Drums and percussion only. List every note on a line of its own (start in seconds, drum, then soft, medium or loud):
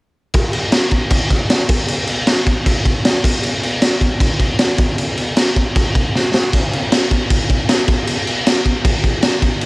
0.34 kick loud
0.34 crash medium
0.53 crash medium
0.72 snare loud
0.72 crash medium
0.91 kick medium
0.91 crash medium
1.10 kick loud
1.10 crash medium
1.30 kick medium
1.30 crash medium
1.50 snare loud
1.50 crash medium
1.69 kick loud
1.69 crash loud
1.88 crash medium
2.07 crash medium
2.27 snare loud
2.27 crash medium
2.47 kick medium
2.47 crash medium
2.66 kick loud
2.66 crash medium
2.85 kick medium
2.85 crash medium
3.05 snare loud
3.05 crash medium
3.24 kick loud
3.24 crash loud
3.43 crash medium
3.63 crash medium
3.82 snare loud
3.82 crash medium
4.01 kick medium
4.01 crash medium
4.20 kick loud
4.20 crash medium
4.40 kick medium
4.40 crash medium
4.59 snare loud
4.59 crash medium
4.78 kick loud
4.78 crash medium
4.98 crash medium
5.17 crash medium
5.37 snare loud
5.37 crash loud
5.56 kick medium
5.56 crash medium
5.76 kick loud
5.76 crash medium
5.95 kick medium
5.95 crash medium
6.15 snare medium
6.34 snare loud
6.53 kick loud
6.53 splash medium
6.53 crash medium
6.73 crash medium
6.92 snare loud
6.92 crash loud
7.11 kick medium
7.11 crash medium
7.30 kick loud
7.30 crash medium
7.50 kick medium
7.50 crash medium
7.69 snare loud
7.69 crash medium
7.88 kick loud
7.88 crash medium
8.07 crash medium
8.27 crash medium
8.47 snare loud
8.47 crash medium
8.66 kick medium
8.66 crash medium
8.85 kick loud
8.85 crash medium
9.04 kick medium
9.04 crash medium
9.22 snare loud
9.22 crash medium
9.42 kick loud
9.42 crash medium
9.61 crash medium